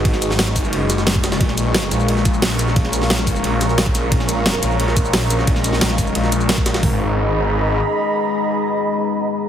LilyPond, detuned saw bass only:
\new Staff \with { instrumentName = "Detuned saw bass" } { \clef bass \time 4/4 \key gis \dorian \tempo 4 = 177 gis,,4 gis,,4 fis,,2 | ais,,4. ais,,8 ais,,4. ais,,8~ | ais,,4 ais,,4 ais,,4 ais,,4 | ais,,4. ais,,8 ais,,4. ais,,8~ |
ais,,4 ais,,4 ais,,2 | gis,,2. r4 | r1 | }